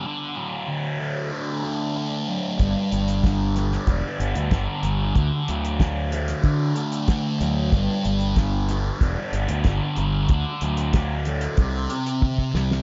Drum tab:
HH |----------------|x-xxx-x-x-xxx-x-|x-xxx-xxx-xxx-x-|x-xxx-x-x-xxx-x-|
SD |----------------|----o--o----o---|----o--o----o---|----o-------o---|
T1 |----------------|----------------|----------------|----------------|
BD |----------------|o---o---o---o---|o---o---o---o---|o---o---o---o---|

HH |x-xxx-xxx-xx----|
SD |----o---------oo|
T1 |------------o---|
BD |o---o---o---oo--|